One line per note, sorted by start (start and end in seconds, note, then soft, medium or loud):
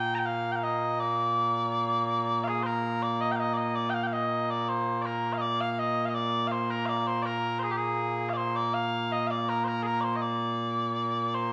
0.00 11.53 A#2 medium
0.00 11.53 A#3 medium
0.00 0.15 G5 loud
0.15 0.26 G5 medium
0.15 0.18 A#5 medium
0.26 0.52 F5 medium
0.52 0.63 F5 medium
0.52 0.56 G5 medium
0.63 1.00 D#5 medium
1.00 2.44 D5 medium
2.44 2.48 F5 medium
2.48 2.63 G#4 medium
2.63 3.02 A#4 medium
2.63 2.66 C5 medium
3.02 3.21 D5 loud
3.21 3.31 D#5 medium
3.31 3.36 G5 medium
3.36 3.40 F5 medium
3.40 3.54 D#5 medium
3.54 3.57 D5 medium
3.54 3.75 D#5 medium
3.75 3.90 D5 medium
3.90 3.94 G5 medium
3.94 4.03 F5 medium
4.03 4.13 F5 medium
4.03 4.07 G5 medium
4.13 4.50 D#5 medium
4.50 4.69 D5 medium
4.69 5.02 C5 medium
5.02 5.33 A#4 medium
5.02 5.06 D5 medium
5.33 5.37 F5 medium
5.37 5.61 D5 loud
5.37 5.41 D#5 medium
5.61 5.71 F5 loud
5.71 5.79 F5 medium
5.79 6.05 D#5 loud
6.05 6.14 D#5 medium
6.05 6.09 F5 medium
6.14 6.47 D5 loud
6.47 6.52 F5 medium
6.52 6.70 C5 medium
6.70 6.86 A#4 loud
6.86 7.07 D5 loud
6.86 6.89 F5 loud
7.07 7.23 C5 loud
7.23 7.59 A#4 medium
7.23 7.26 D5 medium
7.59 7.71 G#4 medium
7.59 7.63 C5 medium
7.71 7.76 G4 medium
7.76 8.29 G#4 medium
8.29 8.37 D5 medium
8.29 8.33 F5 medium
8.37 8.56 C5 loud
8.56 8.74 D5 medium
8.74 9.12 F5 loud
9.12 9.27 D#5 loud
9.27 9.49 D5 medium
9.27 9.31 F5 medium
9.49 9.64 A#4 medium
9.64 9.83 A#4 loud
9.64 9.68 C5 medium
9.83 9.86 G#4 medium
9.83 10.01 A#4 medium
10.01 10.16 C5 medium
10.01 10.03 D5 medium
10.16 10.21 D#5 medium
10.21 11.34 D5 medium
11.34 11.53 C5 loud